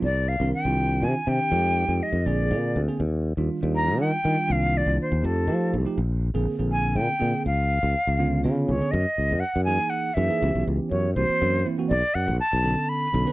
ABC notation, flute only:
X:1
M:6/8
L:1/8
Q:3/8=81
K:Bbmix
V:1 name="Flute"
d f g2 a g- | g2 e d2 z | z3 b g2 | f d c =A2 z |
z3 a g2 | f4 z _d | [K:F#mix] d2 f g f e- | e z c =c2 z |
=d f =a2 b2 |]